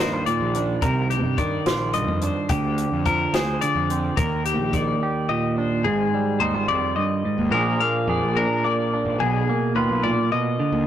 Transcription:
Already playing: D#2 D#3
0.00 G2 D#4 C5
0.13 F4
0.26 A#2 D5, closed hi-hat
0.40 A#1
0.54 D4, closed hi-hat
0.82 C2 C3 A#4, kick, closed hi-hat
1.10 G4, closed hi-hat
1.24 G2
1.38 D#3 D5, kick, closed hi-hat
1.66 A#1 F4, snare, closed hi-hat
1.93 G2 D#5, closed hi-hat
2.08 F2
2.21 D4 C5, closed hi-hat
2.49 D2 D3 G4, kick, closed hi-hat
2.78 closed hi-hat
2.92 F2
3.06 F3 A#4, kick, closed hi-hat
3.33 D2 G#4 C5, snare, closed hi-hat
3.61 D3 D5, closed hi-hat
3.75 F2
3.90 C4, closed hi-hat
4.17 D#2 A#4, kick, closed hi-hat
4.45 G4, closed hi-hat
4.58 A#1
4.73 D#3 D5, kick, closed hi-hat
5.03 G4
5.29 A#2 D#5
5.56 D4 C5
5.84 G#1 G#2 G#4
6.14 G3
6.40 D#2 D#4 C5
6.54 G#1 F4
6.68 F2 D5
6.96 G2 D#5
7.25 G#2
7.38 D#2
7.51 A#1 A#2 F3 A#3 D4 G#4 A#4
7.80 A#3 F5
8.07 F2 G#4 D5
8.22 A#1
8.37 D4 A#4
8.64 A#3 D5
8.94 D4
9.05 G#1
9.19 B1 B2 G#4
9.49 A#3
9.75 D#2 F4 B4
9.89 B1
10.03 A#2 D5
10.32 B2 D#5
10.59 D3
10.72 D#2

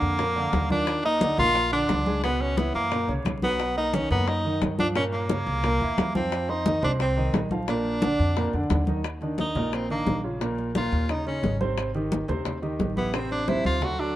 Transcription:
Already playing: D3 A#3 D4 D5
0.02 F2, high bongo, high conga
0.19 A#2 A#3 A#4, high bongo, high conga
0.36 D3 D4 D5, high bongo, high conga
0.53 D#2, high bongo, low bongo, high conga
0.70 D#3 D4 F4 D5, high bongo, high conga
0.87 high bongo
1.04 A#3 D#4 A#4 A#5, high conga
1.21 D3 D4 D5, high bongo, high conga
1.38 A#1 A#3 F4 A#4 A#5, high conga, low conga
1.55 high bongo, high conga
1.72 D3 D4 D5, high conga
1.89 C#2, high bongo, low bongo, high conga
2.06 G#3 G#4 G#5, high conga
2.24 B2 B3 B4, high bongo, high conga
2.40 C#4, high conga
2.57 E3 B3 E4 E5, high bongo, high conga
2.74 F#2 A#3, high bongo, high conga
2.92 A#2 A#3 A#4, high bongo, high conga
3.08 C2 C#3 C#4 C#5, high bongo, high conga
3.25 B1, high bongo, low bongo, high conga
3.42 F#3 B3 F#4 F#5, high bongo, high conga
3.60 high bongo, high conga
3.76 A#3 D#4 A#4 A#5, high conga
3.94 D#3 C#4 D#4 D#5, high bongo, high conga
4.10 F#2 A#3 B3 A#4 A#5, high conga, low conga
4.28 D#4, high bongo, high conga
4.45 D#3 D#4 D#5, high conga
4.62 G2, high bongo, low bongo, high conga
4.78 F3 D4 F4 F5, high conga
4.95 A#2 A#3 C#4 A#4, high bongo, high conga
5.13 A#3, high conga
5.29 C#3 C#4 C#5, high bongo, high conga
5.47 C2, high bongo, high conga
5.64 A#2 A#3 A#4, high bongo, high conga
5.81 E2 E3 E4 E5, high bongo, high conga
5.98 F2, high bongo, low bongo, high conga
6.15 F3 C4 F4 F5, high bongo, high conga
6.32 high bongo, high conga
6.49 C4 D#4 C5 C6, high conga
6.66 D#3 D#4 D#5, high bongo, high conga
6.83 C2 C4 D4 C5 C6, high conga, low conga
7.00 C4, high bongo, high conga
7.16 D#3 D#4 D#5, high conga
7.34 A#1, high bongo, low bongo, high conga
7.51 F3 F4 F5, high conga
7.68 A#2 A#3 D4 A#4, high bongo, high conga
7.85 high conga
8.02 D3 D4 D5, high bongo, high conga
8.19 F2, high bongo, high conga
8.36 A#2 A#3 A#4, high bongo, high conga
8.53 F2 D3 D4 D5, high bongo, high conga
8.70 D#2, high bongo, low bongo, high conga
8.87 D#3 D#4 D#5, high bongo, high conga
9.04 high bongo, high conga
9.21 D#3 D4 D#4, high bongo, high conga
9.38 D#4, high bongo, high conga
9.55 A#1 A#2 A#3 A#4, high bongo, high conga, low conga
9.72 C4, high bongo, high conga
9.89 D#3 A#3 D4 D#4, high bongo, high conga
10.06 A#1, high bongo, low bongo, high conga
10.24 C#3 C#4 F4
10.41 A#2 A#3 A#4, high bongo, high conga
10.58 high bongo, high conga
10.75 A#2 A#3 F4 A#4, high bongo, high conga
10.92 D#2, high bongo, high conga
11.09 C#3 C#4 D#4, high bongo, high conga
11.26 C#3 C#4 D#4, high bongo, high conga
11.43 G#1, high bongo, low bongo, high conga
11.60 C3 C4 C5, high conga
11.77 high bongo, high conga
11.95 D#3 D#4 G4, high bongo, high conga
12.12 high bongo, high conga
12.28 D#2 C3 C4 C5, high bongo, high conga, low conga
12.45 high bongo, high conga, low conga
12.62 D#3 D#4 G4, high bongo, high conga
12.79 A1, high bongo, low bongo, high conga
12.96 E3 B3 E4 G4, high conga
13.13 C3 C4 C5, high bongo
13.31 D4, high bongo, high conga
13.48 C3 C4 E4 C5, high bongo, high conga
13.65 D2 F4, high bongo, high conga
13.81 F#3 F#4 A4, high bongo, low conga
13.99 F#3 D4 F#4 A4, high bongo

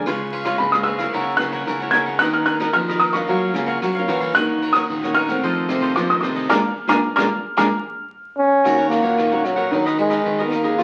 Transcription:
0.06 C#3 G#3 B3 F4 B4 C#5 F5, kick, cross-stick, ride
0.32 F4 B4 C#5 F5, ride
0.45 G#3 B3 F4 B4 C#5 F5, kick, cross-stick, ride
0.58 G#2 C#3 B5, kick, ride
0.72 G#3 B3 F4 B4 C#5 F5 D#6, cross-stick
0.83 F4 B4 C#5 F5 E6, ride
0.98 F#3 A#3 E4 B4 C#5 F5, kick, cross-stick, ride
1.13 C#3 E4 A#4 C#5 F#5, kick, ride
1.37 C#3 F#3 A#3 F#6, cross-stick, ride
1.41 E4
1.52 E4 A#4 C#5 F#5, kick, ride
1.66 C#3 E4 A#4 C#5 F#5, kick, cross-stick, ride
1.80 F#3 A#3 E4 A#4 C#5 F#5
1.91 C#3 E4 A#4 C#5 F#5 G#6, cross-stick, ride
2.06 A#4 C#5 F#5, kick, ride
2.19 D#3 B3 D#4 F#4 A#4 B4 D#5 F#6, kick, cross-stick, ride
2.33 F6
2.45 D#4 A#4 B4 D#5 F#6, ride
2.60 B3 D#4 F#4 A#4 B4 D#5, kick, cross-stick, ride
2.73 D#3 F3 F6, kick, ride
2.88 B3 F#4 A#4 B4 D#5, cross-stick
2.99 D#4 A#4 B4 D#5 D#6, ride
3.13 A#3 C#4 F4 A#4 B4 D#5 C#6, kick, cross-stick, ride
3.27 F#3 F#4 A#4 C#5 F5, kick, ride
3.54 C#3 A#3 C#4 F4, cross-stick, ride
3.66 F#4 A#4 C#5 F5, kick, ride
3.82 C#3 F#3 F#4 A#4 C#5 F5, kick, cross-stick, ride
3.95 A#3 C#4 F4 A#4 C#5 F5
4.08 E3 F#4 A#4 C#5 F5, cross-stick, ride
4.20 A#4 C#5 F5, kick, ride
4.35 D#3 A#3 C#4 D#4 F#4 A#4 C#5 F#5 F#6, kick, cross-stick, ride
4.62 D#4 A#4 C#5 F#5, ride
4.73 A#3 C#4 D#4 F#4 A#4 C#5 F#5 D#6, kick, cross-stick, ride
4.90 A#2 D#3, kick, ride
5.03 A#3 C#4 F#4 A#4 C#5 F#5, cross-stick
5.14 D#4 A#4 C#5 F#5 F6, ride
5.28 D#3 A3 C4 A#4 C#5 F#5, kick, cross-stick, ride
5.43 F2 F3 F4 A4 C5 D#5, kick, ride
5.68 C3 D#3 A3 C4, cross-stick, ride
5.81 F4 A4 C5 D#5, kick, ride
5.96 C3 F3 F4 A4 C5 D#5 D6, kick, cross-stick, ride
6.10 D#3 A3 C4 A4 C5 D#5 D#6
6.21 C3 F4 A4 C5 D#5 D6, cross-stick, ride
6.35 A4 C5 D#5, kick, ride
6.49 A#2 G#3 A#3 D4 G#4 A#4 D5 A#5 D6 F6, kick, snare
6.87 A#2 G#3 A#3 D4 G#4 A#4 D5 A#5 D6 F6, kick, snare
7.16 A#2 G#3 A#3 D4 G#4 A#4 D5 A#5 D6 F6, kick, snare
7.57 A#2 G#3 A#3 D4 G#4 A#4 D5 A#5 D6 F6, kick, snare
8.37 C#4
8.64 D#3 A#3 C#4 D#4 F#4 A#4 C#5 F#5, kick, cross-stick, crash
8.77 A#4 C#5 F#5
8.89 A#3 C#4 F#4, cross-stick, ride
9.01 A#2 A#4 C#5 F#5, kick, ride
9.17 A#2 D#3 D#4 A#4 C#5 F#5, kick, cross-stick, ride
9.31 A#3 C#4 F#4 A#4 C#5 F#5
9.45 F#3, cross-stick, ride
9.56 B3 F#4 A#4 C#5 F#5, kick, ride
9.71 D#3 F#3 D#4 A#4 B4 D#5, kick, ride
9.86 A#4 B4 D#5, cross-stick
9.97 G#3 B3 F#4 A#4, muted cavaquinho stroke, ride
10.09 A#4 B4 D#5, kick, cross-stick, ride
10.25 D#3, kick, ride
10.38 B3 F#4 A#4 B4 D#5
10.45 B3
10.51 A#3 D#4 A#4 B4 D#5, cross-stick, ride
10.64 C#4 G#4 A#4 B4 D#5, kick, ride
10.78 F3 F4 B4 C#5, kick, cross-stick, ride

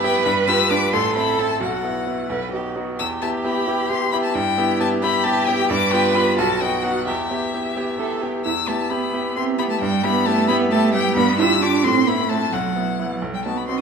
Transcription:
Already playing: G2 B3 E4 G4 B4
0.03 B3 E4 G4 G5
0.25 G2 B5
0.47 D4 F4 G4 E6
0.70 D4 F4 G4 D6
0.93 A1 A4 C6
1.16 C4 E4 B5
1.38 C4 E4 A5
1.61 B1 F#4 F#5
1.83 B3 E4
2.07 B3 E4
2.29 B1 B4
2.52 B3 D#4 F#4 G4
2.76 B3 D#4 F#4
2.98 E2 G4 E6
3.22 B3 E4 G4 A5
3.44 B3 E4 G4 B5
3.67 B3 E4 G4
3.89 B3 E4 G4 C6
4.12 B3 E4 G4 B5
4.23 A5
4.34 G2 E4 G5
4.58 B3 E4 G4
4.80 B3 E4 G4 A5
5.02 B3 E4 G4 B5
5.24 B3 E4 G4 A5
5.47 B3 E4 G4 G5
5.69 G2 B4 D6
5.91 B3 F4 G4 G5
6.15 B3 F4 G4 B5
6.38 B1 F#4 A5
6.60 B3 D#4 F#4 G5
6.83 B3 D#4 F#4 F#5
7.07 E2 G4 E5
7.31 B3 E4 G4
7.54 B3 E4 G4
7.75 B3 E4 G4
7.98 B3 E4 G4 A4
8.22 B3 E4 G4
8.44 E2 E4 E6
8.67 A3 B3 E4 G4 A5
8.90 B3 E4 G4 B5
9.13 B3 E4 G4
9.36 B3 C4 E4 G4 C6
9.59 B3 E4 G4 B5
9.70 A3 A5
9.81 G2 G3 G5
10.04 B3 E4 G4 B5
10.26 A3 B3 E4 G4 A5
10.48 B3 E4 G4 B5
10.71 A3 B3 E4 G4 A5
10.94 G3 B3 E4 G4 G5
11.16 G2 B3 B5
11.39 D4 E4 F4 G4 E6
11.61 D4 F4 G4 D6
11.83 A2 C4 C6
12.05 B3 C4 E4 B5
12.29 A3 C4 E4 A5
12.52 B1 F#3 F#5
12.76 B3 E4
13.00 B3 E4
13.22 B1
13.32 G3 G5
13.45 A3 B3 D#4 F#4 A5
13.56 B3 B5
13.68 B3 C4 D#4 F#4 C6

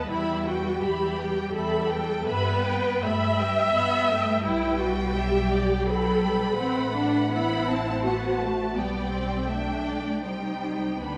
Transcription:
Already playing: B4 D#5 A5
0.09 E2 G3 E4 G4 E5 B5
0.46 F#4 B4 G5
0.81 E2 G4 E5 B5
1.18 B4 G5
1.53 E2 G4 A4 E5 B5
1.88 B4 G5
2.26 G2 B3 G4 B4 E5 B5
2.63 B4 G5
3.02 G2 A3 G4 E5 B5
3.38 G3 B4 G5
3.74 G2 B3 G4 E5 B5
4.10 A3 B4 G5
4.45 B1 G3 E4 B4 G5
4.80 F#4
5.16 G4 E5 G5
5.51 D5
5.87 F#3 A4 B4 B5
6.24 G3
6.58 A1 A3 C4 F#5
6.95 D4
7.31 B3 E4 C5 B5
7.68 C4 A5
8.03 B3 F#4 F#5 A5
8.40 A3 A5
8.75 B1 G3 B3 D5 G5
9.12 C4
9.49 A3 D4 E5 G5
9.87 D5
10.24 C2 G3 D#4 C5 G5
11.01 D2 B3 D4 B4 G5 B5

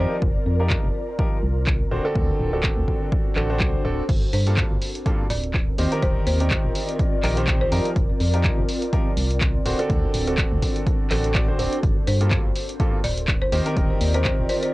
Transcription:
Already playing: F3 C4 D#4 F4 G4 A#4 C5 D5
0.22 F1, kick
0.46 F2
0.60 F3 D#4 F4 G4 A#4
0.70 kick, clap
0.84 F1
1.19 F3 D#4 F4 G4 A#4, kick
1.43 C2
1.67 kick, clap
1.91 D1 D3 C4 D4 F#4 C5
2.05 D3 C4 D4 F#4 A4
2.14 D2 F#4, kick
2.40 D1
2.53 D3 C4 D4 F#4 A4 C5
2.60 A4, clap
2.64 kick
2.77 D2
2.88 kick
3.12 kick
3.36 A1 D3 C4 D4 F#4 A4, clap
3.50 D3 C4 D4 F#4 C5
3.60 C2, kick, clap
3.85 D1 C4 D4 F#4 A4
4.09 G1 C4, kick, closed hi-hat, crash
4.33 G2 C5, open hi-hat
4.43 G2 A#3 F4 G4 A4 A#4, closed hi-hat
4.53 F4
4.57 kick, clap, closed hi-hat
4.67 G1 D5
4.82 open hi-hat
4.95 closed hi-hat
5.06 G2 A#3 F4 G4 A4, kick, closed hi-hat
5.30 D1 D5, open hi-hat
5.43 closed hi-hat
5.54 kick, clap, closed hi-hat
5.78 D#2 D#3 C4 D#4 G4 C5, open hi-hat
5.92 D#3 C4 D#4 G4 A#4, closed hi-hat
6.02 D#1 C5, kick, closed hi-hat
6.27 D#2 C5, open hi-hat
6.40 D#3 C4 D#4 G4 A#4, closed hi-hat
6.51 kick, clap, closed hi-hat
6.64 D#1
6.75 open hi-hat
6.89 closed hi-hat
6.99 kick, closed hi-hat
7.23 A#1 D#3 C4 D#4 G4 A#4, clap, open hi-hat
7.37 D#3 C4 D#4 G4 C5, closed hi-hat
7.47 kick, clap, closed hi-hat
7.61 C5
7.72 F2 F3 D#4 F4 G4 A#4, open hi-hat
7.85 closed hi-hat
7.96 F1, kick, closed hi-hat
8.20 F2, open hi-hat
8.34 F3 D#4 F4 G4 A#4, closed hi-hat
8.44 kick, clap, closed hi-hat
8.58 F1
8.69 open hi-hat
8.82 closed hi-hat
8.93 F3 D#4 F4 G4 A#4, kick, closed hi-hat
9.17 C2, open hi-hat
9.31 closed hi-hat
9.41 kick, clap, closed hi-hat
9.65 D1 D3 C4 D4 F#4 C5, open hi-hat
9.79 D3 C4 D4 F#4 A4, closed hi-hat
9.90 D2, kick, closed hi-hat
10.14 D1, open hi-hat
10.27 D3 C4 D4 F#4 A4, closed hi-hat
10.38 kick, clap, closed hi-hat
10.52 D2
10.62 C5, kick, open hi-hat
10.76 closed hi-hat
10.86 kick, closed hi-hat
11.10 A1 D3 C4 D4 F#4 A4, clap, open hi-hat
11.24 closed hi-hat
11.34 D3 C4 D4 F#4 D5, kick, clap, closed hi-hat
11.48 D3 C4 D4 F#4 C5
11.59 D1 C4 D4 F#4 C5, open hi-hat
11.73 closed hi-hat
11.83 G1 C4, kick, closed hi-hat
12.07 G2 C5, open hi-hat
12.15 A#4
12.21 G2 A#3 F4 G4 A4, closed hi-hat
12.31 kick, clap, closed hi-hat
12.45 G1
12.56 open hi-hat
12.60 D5
12.69 closed hi-hat
12.80 G2 A#3 F4 G4 A4, kick, closed hi-hat
13.04 D1 D5, open hi-hat
13.18 closed hi-hat
13.28 kick, clap, closed hi-hat
13.42 C5
13.52 D#2 D#3 C4 D#4 G4 C5, open hi-hat
13.66 D#3 C4 D#4 G4 A#4, closed hi-hat
13.77 D#1, kick, closed hi-hat
14.01 D#2, open hi-hat
14.14 D#3 C4 D#4 G4 A#4 C5, closed hi-hat
14.25 C5, kick, clap, closed hi-hat
14.39 D#1
14.49 C5, open hi-hat
14.63 C5, closed hi-hat

